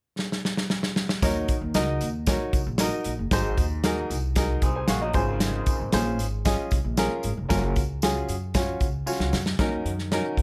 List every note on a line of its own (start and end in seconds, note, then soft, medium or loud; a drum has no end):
0.19 snare soft
0.32 snare medium
0.45 snare medium
0.57 snare medium
0.70 snare medium
0.83 snare medium
0.96 snare medium
1.09 snare medium
1.22 1.45 D#2 medium
1.22 1.97 D#3 medium
1.22 1.53 D#4 medium
1.22 1.53 F#4 medium
1.22 1.53 A#4 medium
1.22 1.53 C#5 loud
1.22 kick loud
1.22 snare loud
1.22 closed hi-hat medium
1.22 tambourine medium
1.48 kick medium
1.48 closed hi-hat medium
1.48 tambourine medium
1.61 1.73 D#2 medium
1.74 1.97 C#2 medium
1.74 2.05 D#4 medium
1.74 2.05 F#4 medium
1.74 2.05 A#4 medium
1.74 2.05 D#5 medium
1.74 snare loud
1.74 closed hi-hat medium
1.74 tambourine medium
2.01 2.34 D#2 medium
2.01 closed hi-hat medium
2.01 tambourine medium
2.26 2.58 D#4 medium
2.26 2.58 F#4 medium
2.26 2.58 A#4 medium
2.26 2.58 C#5 medium
2.26 kick medium
2.26 snare medium
2.26 closed hi-hat medium
2.26 tambourine medium
2.53 2.64 C2 medium
2.53 kick medium
2.53 closed hi-hat medium
2.53 tambourine medium
2.67 2.89 A#1 medium
2.78 3.10 D#4 medium
2.78 3.10 F#4 medium
2.78 3.10 A#4 medium
2.78 3.10 D#5 medium
2.78 snare loud
2.78 closed hi-hat medium
2.78 tambourine loud
3.04 3.17 A#1 medium
3.04 closed hi-hat medium
3.04 tambourine soft
3.19 3.30 F#1 medium
3.31 3.54 G#1 loud
3.31 4.07 G#2 medium
3.31 3.62 D#4 medium
3.31 3.63 F#4 medium
3.31 3.63 G#4 medium
3.31 3.63 C5 loud
3.31 kick loud
3.31 snare loud
3.31 closed hi-hat medium
3.31 tambourine medium
3.57 4.02 D#2 medium
3.57 kick medium
3.57 closed hi-hat medium
3.57 tambourine medium
3.84 4.15 D#4 medium
3.84 4.15 F#4 medium
3.84 4.15 G#4 medium
3.84 4.15 A#4 medium
3.84 snare loud
3.84 closed hi-hat medium
3.84 tambourine medium
4.10 4.55 C2 medium
4.10 closed hi-hat medium
4.10 tambourine medium
4.35 4.67 D#4 medium
4.35 4.63 F#4 medium
4.35 4.63 G#4 medium
4.35 4.63 A#4 medium
4.35 kick medium
4.35 snare loud
4.35 closed hi-hat medium
4.35 tambourine medium
4.62 4.84 C2 medium
4.62 4.88 C4 medium
4.62 4.88 G#4 medium
4.62 kick medium
4.62 closed hi-hat medium
4.62 tambourine medium
4.75 4.88 C5 soft
4.75 4.88 G#5 medium
4.88 5.11 A#1 medium
4.88 5.01 A#3 medium
4.88 5.01 F#4 medium
4.88 5.01 G#4 medium
4.88 5.01 F5 medium
4.88 snare loud
4.88 closed hi-hat medium
4.88 tambourine medium
5.01 5.14 F#3 medium
5.01 5.14 D#4 medium
5.01 5.27 F#4 medium
5.01 5.26 D#5 medium
5.13 5.59 G#1 medium
5.13 5.89 G#2 medium
5.13 5.77 C#3 medium
5.13 5.28 F3 medium
5.13 5.27 C#4 medium
5.13 5.77 F4 medium
5.13 5.77 G#4 medium
5.13 5.77 C5 medium
5.13 kick loud
5.13 closed hi-hat medium
5.13 tambourine medium
5.28 6.03 D#3 medium
5.28 6.02 C4 medium
5.40 snare loud
5.40 closed hi-hat medium
5.40 tambourine medium
5.66 kick medium
5.66 closed hi-hat medium
5.66 tambourine medium
5.80 5.91 G#1 medium
5.92 6.19 A#1 medium
5.92 6.24 C#4 medium
5.92 6.24 F4 medium
5.92 6.24 G#4 medium
5.92 6.24 C5 medium
5.92 snare loud
5.92 closed hi-hat medium
5.92 tambourine medium
6.19 6.53 G#1 medium
6.19 closed hi-hat medium
6.19 tambourine medium
6.45 6.76 C#4 medium
6.45 6.76 F4 medium
6.45 6.76 G#4 medium
6.45 6.76 D#5 medium
6.45 kick loud
6.45 snare medium
6.45 closed hi-hat medium
6.45 tambourine medium
6.71 6.83 C2 medium
6.71 kick medium
6.71 closed hi-hat medium
6.71 tambourine medium
6.84 7.07 A#1 medium
6.97 7.28 C#4 medium
6.97 7.28 F4 medium
6.97 7.28 G#4 medium
6.97 7.28 A#4 medium
6.97 snare loud
6.97 closed hi-hat medium
6.97 tambourine medium
7.23 7.35 G#1 medium
7.23 closed hi-hat medium
7.23 tambourine soft
7.37 7.48 F1 medium
7.49 7.72 F#1 loud
7.49 7.80 C#4 medium
7.49 7.80 F4 medium
7.49 7.80 F#4 medium
7.49 7.80 A#4 medium
7.49 kick loud
7.49 snare loud
7.49 closed hi-hat medium
7.49 tambourine medium
7.76 8.20 C#2 medium
7.76 kick medium
7.76 closed hi-hat medium
7.76 tambourine medium
8.02 8.33 C#4 medium
8.02 8.33 F4 medium
8.02 8.33 F#4 medium
8.02 8.33 G#4 medium
8.02 snare loud
8.02 closed hi-hat medium
8.02 tambourine medium
8.28 8.73 F#2 medium
8.28 closed hi-hat medium
8.28 tambourine medium
8.54 8.85 C#4 medium
8.54 8.85 F4 medium
8.54 8.85 F#4 medium
8.54 8.85 C#5 medium
8.54 kick medium
8.54 snare loud
8.54 closed hi-hat medium
8.54 tambourine medium
8.80 9.03 C#2 medium
8.80 kick medium
8.80 closed hi-hat medium
8.80 tambourine soft
9.06 9.37 C#4 medium
9.06 9.37 F4 medium
9.06 9.37 F#4 medium
9.06 9.37 C#5 medium
9.06 muted upright bass stroke soft
9.06 tambourine medium
9.19 9.31 C#2 medium
9.19 snare medium
9.33 9.55 F#2 medium
9.33 snare medium
9.33 tambourine medium
9.46 snare medium
9.59 9.81 D#2 medium
9.59 10.34 D#3 medium
9.59 9.90 C#4 medium
9.59 9.90 D#4 medium
9.59 9.90 F#4 medium
9.59 9.90 A#4 medium
9.59 kick loud
9.59 snare medium
9.59 closed hi-hat medium
9.85 10.18 F#2 medium
9.85 closed hi-hat medium
9.99 snare soft
10.12 10.42 C#4 medium
10.12 10.42 D#4 medium
10.12 10.42 F#4 medium
10.12 10.42 A#4 medium
10.12 snare medium
10.12 closed hi-hat medium
10.37 10.42 D#2 medium
10.37 kick medium
10.37 closed hi-hat medium